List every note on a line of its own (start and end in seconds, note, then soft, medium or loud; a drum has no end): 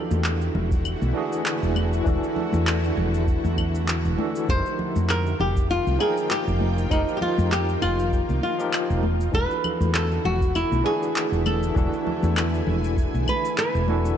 0.00 4.45 D3 medium
0.00 1.11 E3 medium
0.00 4.45 A3 medium
0.00 1.12 D4 medium
0.00 4.45 E4 medium
0.00 1.12 F#4 medium
0.00 4.45 F#4 medium
0.00 1.13 A4 medium
0.11 0.48 E2 medium
0.11 high conga medium
0.11 cabasa medium
0.24 clap medium
0.24 cabasa medium
0.41 cabasa soft
0.55 0.94 E1 medium
0.55 low conga medium
0.71 kick loud
0.71 cabasa medium
0.85 cabasa medium
0.85 claves medium
1.02 1.11 B1 medium
1.02 high conga medium
1.02 cabasa soft
1.13 2.02 E3 medium
1.13 2.03 D4 medium
1.13 2.03 F#4 medium
1.13 2.04 G#4 loud
1.32 cabasa medium
1.46 clap loud
1.46 cabasa medium
1.63 2.00 E1 medium
1.63 cabasa soft
1.76 high conga medium
1.76 claves medium
1.93 cabasa medium
2.04 2.18 E1 medium
2.04 3.70 E3 medium
2.04 3.70 D4 medium
2.04 3.71 F#4 medium
2.04 3.72 A4 medium
2.04 kick loud
2.04 cabasa medium
2.23 cabasa soft
2.36 low conga medium
2.53 2.91 E2 medium
2.53 high conga medium
2.53 cabasa medium
2.67 clap medium
2.67 cabasa medium
2.67 claves medium
2.84 cabasa soft
2.97 3.36 E1 medium
2.97 low conga medium
3.14 cabasa medium
3.28 kick loud
3.28 cabasa medium
3.45 4.07 E2 medium
3.45 high conga medium
3.45 cabasa soft
3.58 kick medium
3.58 claves medium
3.75 cabasa medium
3.88 clap medium
3.88 cabasa medium
4.05 4.14 E1 medium
4.05 cabasa soft
4.17 4.45 E3 medium
4.17 4.45 D4 medium
4.17 4.46 F#4 medium
4.17 4.46 A4 medium
4.17 high conga medium
4.35 cabasa medium
4.47 4.60 F1 medium
4.47 9.00 D#3 medium
4.47 5.96 F3 medium
4.47 9.00 A#3 medium
4.47 9.00 F4 medium
4.47 5.98 A#4 medium
4.47 5.10 C5 loud
4.47 9.00 G5 medium
4.47 kick loud
4.47 cabasa medium
4.66 cabasa soft
4.79 low conga medium
4.96 5.33 F2 medium
4.96 high conga medium
4.96 cabasa medium
5.09 5.40 A#4 medium
5.09 clap medium
5.09 cabasa medium
5.09 claves medium
5.26 cabasa soft
5.40 5.78 F1 medium
5.40 5.70 G4 medium
5.40 low conga medium
5.56 kick loud
5.56 cabasa medium
5.70 6.00 F4 loud
5.70 cabasa medium
5.87 5.96 C2 medium
5.87 high conga medium
5.87 cabasa soft
5.98 6.87 F3 medium
5.98 6.88 D#4 medium
5.98 6.31 G#4 medium
5.98 6.88 G5 medium
5.98 claves medium
6.02 6.89 A#4 loud
6.17 cabasa medium
6.31 6.87 G4 medium
6.31 clap loud
6.31 cabasa medium
6.47 6.85 F1 medium
6.47 cabasa soft
6.61 high conga medium
6.78 cabasa medium
6.89 7.03 F1 medium
6.89 8.54 F3 medium
6.89 8.55 D#4 medium
6.89 7.16 D#4 medium
6.89 8.56 G4 medium
6.89 kick loud
6.89 cabasa soft
6.89 claves medium
6.93 8.56 A#4 medium
7.08 cabasa soft
7.17 7.22 G4 medium
7.21 7.52 F4 medium
7.21 low conga medium
7.38 7.75 F2 medium
7.38 high conga medium
7.38 cabasa medium
7.52 7.82 G4 medium
7.52 clap medium
7.52 cabasa medium
7.69 cabasa soft
7.82 8.21 F1 medium
7.82 8.39 F4 medium
7.82 low conga medium
7.82 claves medium
7.99 cabasa medium
8.12 kick medium
8.12 cabasa medium
8.29 8.39 C2 medium
8.29 high conga medium
8.29 cabasa soft
8.43 9.00 F4 medium
8.59 9.01 F3 medium
8.59 9.02 D#4 medium
8.59 9.02 G4 medium
8.59 9.02 A#4 loud
8.59 cabasa medium
8.73 clap medium
8.73 cabasa medium
8.73 claves medium
8.90 9.27 E1 medium
8.90 cabasa soft
9.03 14.15 D3 medium
9.03 14.14 A3 medium
9.03 14.14 E4 medium
9.03 11.43 F#4 medium
9.03 high conga medium
9.21 cabasa medium
9.32 9.45 E1 medium
9.32 10.81 E3 medium
9.32 10.82 D4 medium
9.32 10.82 F#4 medium
9.32 10.83 A4 medium
9.32 9.94 B4 loud
9.32 kick loud
9.32 cabasa soft
9.51 cabasa soft
9.64 low conga medium
9.64 claves medium
9.81 10.18 E2 medium
9.81 high conga medium
9.81 cabasa medium
9.94 10.26 A4 medium
9.94 clap medium
9.94 cabasa medium
10.12 cabasa soft
10.25 10.63 E1 medium
10.25 10.56 F#4 medium
10.25 low conga medium
10.41 kick loud
10.41 cabasa medium
10.55 10.85 E4 loud
10.55 cabasa soft
10.55 claves medium
10.72 10.81 B1 medium
10.72 high conga medium
10.72 cabasa soft
10.83 11.72 E3 medium
10.83 11.72 D4 medium
10.83 11.73 F#4 medium
10.83 11.42 G#4 loud
10.83 11.74 G#4 loud
11.03 cabasa medium
11.16 clap loud
11.16 cabasa soft
11.32 11.69 E1 medium
11.32 cabasa soft
11.46 13.85 A4 medium
11.46 14.16 G#5 medium
11.46 high conga medium
11.46 claves medium
11.63 cabasa medium
11.74 11.88 E1 medium
11.74 13.40 E3 medium
11.74 13.40 D4 medium
11.74 13.41 F#4 medium
11.74 13.42 A4 medium
11.74 kick loud
11.74 cabasa medium
11.93 cabasa soft
12.07 low conga medium
12.23 12.60 E2 medium
12.23 high conga medium
12.23 cabasa medium
12.37 clap loud
12.37 cabasa medium
12.37 claves medium
12.54 cabasa soft
12.67 13.06 E1 medium
12.67 low conga medium
12.84 cabasa medium
12.97 kick medium
12.97 cabasa soft
13.14 13.24 B1 medium
13.14 high conga medium
13.14 cabasa soft
13.28 13.57 B4 loud
13.28 kick medium
13.28 claves medium
13.45 cabasa medium
13.58 14.17 B4 loud
13.58 clap medium
13.58 cabasa medium
13.75 14.12 E1 medium
13.75 cabasa soft
13.88 14.15 E3 medium
13.88 14.15 D4 medium
13.88 14.16 F#4 medium
13.88 14.16 A4 medium
13.88 high conga medium
14.05 cabasa medium